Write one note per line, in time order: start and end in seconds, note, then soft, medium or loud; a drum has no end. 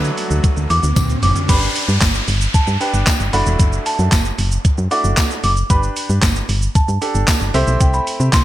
0.00 0.11 D3 medium
0.00 1.47 D3 medium
0.00 0.69 F#3 medium
0.00 0.69 A3 medium
0.00 1.45 A3 medium
0.00 0.69 D4 medium
0.00 1.47 F#4 medium
0.00 0.69 B4 loud
0.00 0.92 D5 loud
0.00 riser medium
0.04 shaker medium
0.18 open hi-hat medium
0.18 shaker medium
0.31 0.40 D2 medium
0.31 shaker medium
0.44 kick loud
0.44 closed hi-hat medium
0.44 high tom medium
0.44 shaker medium
0.57 0.67 D2 medium
0.57 shaker medium
0.70 0.80 E2 medium
0.70 1.21 D6 loud
0.70 open hi-hat medium
0.70 shaker soft
0.83 0.93 D2 medium
0.83 shaker medium
0.96 1.16 D2 loud
0.96 kick loud
0.96 closed hi-hat medium
0.96 mid tom medium
0.96 tambourine medium
0.96 shaker medium
1.10 mid tom medium
1.10 shaker medium
1.23 1.33 F#1 medium
1.23 1.35 D6 loud
1.23 floor tom loud
1.23 open hi-hat medium
1.23 shaker medium
1.36 floor tom medium
1.36 shaker medium
1.49 1.69 G1 loud
1.49 2.26 D4 medium
1.49 2.27 G4 medium
1.49 2.27 B4 medium
1.49 2.58 B5 loud
1.49 kick loud
1.49 closed hi-hat medium
1.49 crash loud
1.49 downlifter medium
1.49 shaker medium
1.62 shaker medium
1.76 open hi-hat medium
1.76 shaker medium
1.89 1.98 G2 loud
1.89 shaker medium
2.01 2.21 G1 medium
2.01 kick loud
2.01 snare loud
2.01 clap loud
2.01 closed hi-hat medium
2.01 tambourine medium
2.01 shaker medium
2.15 shaker medium
2.28 2.48 G1 loud
2.28 open hi-hat medium
2.28 shaker medium
2.41 shaker medium
2.54 2.60 G2 soft
2.54 2.81 A5 loud
2.54 kick loud
2.54 closed hi-hat medium
2.54 shaker medium
2.67 2.77 G2 loud
2.67 shaker medium
2.80 3.32 D4 medium
2.80 3.33 G4 medium
2.80 3.33 B4 medium
2.80 3.35 G5 medium
2.80 open hi-hat medium
2.80 shaker medium
2.94 3.04 G1 medium
2.94 shaker medium
3.07 kick loud
3.07 snare medium
3.07 clap loud
3.07 closed hi-hat medium
3.07 tambourine loud
3.07 shaker medium
3.20 3.30 G1 loud
3.20 shaker medium
3.33 3.43 F#1 medium
3.33 4.17 A3 medium
3.33 4.17 D4 medium
3.33 4.17 E4 medium
3.33 4.18 F#4 medium
3.33 4.18 D5 medium
3.33 3.87 B5 loud
3.33 open hi-hat medium
3.33 shaker medium
3.46 3.56 E1 loud
3.46 shaker medium
3.60 3.79 F#1 loud
3.60 kick loud
3.60 closed hi-hat medium
3.60 shaker medium
3.73 shaker medium
3.86 4.94 A5 loud
3.86 open hi-hat medium
3.86 shaker medium
3.99 4.09 F#2 loud
3.99 shaker medium
4.12 4.32 F#1 medium
4.12 kick loud
4.12 snare loud
4.12 clap loud
4.12 closed hi-hat medium
4.12 tambourine medium
4.12 shaker medium
4.25 shaker medium
4.38 4.58 F#1 loud
4.38 open hi-hat medium
4.38 shaker medium
4.52 shaker medium
4.65 4.70 F#2 medium
4.65 kick loud
4.65 closed hi-hat medium
4.65 shaker medium
4.78 4.88 F#2 loud
4.78 shaker medium
4.91 5.49 A3 medium
4.91 5.49 D4 medium
4.91 5.49 E4 medium
4.91 5.49 F#4 medium
4.91 5.49 D5 medium
4.91 5.40 D6 loud
4.91 open hi-hat medium
4.91 shaker medium
5.04 5.14 F#1 loud
5.04 shaker medium
5.17 kick loud
5.17 snare medium
5.17 clap loud
5.17 closed hi-hat medium
5.17 tambourine loud
5.17 shaker medium
5.31 shaker medium
5.44 5.63 F#1 loud
5.44 5.56 D6 loud
5.44 open hi-hat medium
5.44 shaker medium
5.57 shaker medium
5.70 5.90 G1 loud
5.70 6.47 D4 medium
5.70 6.48 G4 medium
5.70 6.48 B4 medium
5.70 6.71 B5 loud
5.70 kick loud
5.70 closed hi-hat medium
5.70 shaker medium
5.83 shaker medium
5.96 open hi-hat medium
5.96 shaker medium
6.10 6.19 G2 loud
6.10 shaker medium
6.22 6.42 G1 medium
6.22 kick loud
6.22 snare loud
6.22 clap loud
6.22 closed hi-hat medium
6.22 tambourine medium
6.22 shaker medium
6.36 shaker medium
6.49 6.69 G1 loud
6.49 open hi-hat medium
6.49 shaker medium
6.62 shaker medium
6.75 6.81 G2 soft
6.75 7.84 A5 medium
6.75 kick loud
6.75 closed hi-hat medium
6.75 shaker medium
6.88 6.98 G2 loud
6.88 shaker medium
7.01 7.54 D4 medium
7.01 7.53 G4 medium
7.01 7.54 A4 medium
7.01 open hi-hat medium
7.01 shaker medium
7.15 7.25 G1 medium
7.15 shaker medium
7.28 kick loud
7.28 snare loud
7.28 clap loud
7.28 closed hi-hat medium
7.28 tambourine loud
7.28 shaker medium
7.41 7.51 G1 medium
7.41 shaker soft
7.54 7.64 C2 loud
7.54 8.38 A3 loud
7.54 8.38 C4 medium
7.54 8.39 E4 medium
7.54 8.39 G4 medium
7.54 8.39 C5 loud
7.54 open hi-hat medium
7.54 shaker medium
7.67 7.77 B1 loud
7.67 shaker medium
7.81 8.00 C2 loud
7.81 7.93 G5 medium
7.81 kick loud
7.81 closed hi-hat medium
7.81 shaker medium
7.94 8.34 B5 loud
7.94 shaker medium
8.07 open hi-hat medium
8.07 shaker medium
8.20 8.30 C3 loud
8.20 shaker medium
8.33 8.44 C2 loud
8.33 8.44 C6 loud
8.33 kick loud
8.33 snare loud
8.33 clap loud
8.33 closed hi-hat medium
8.33 tambourine medium
8.33 shaker medium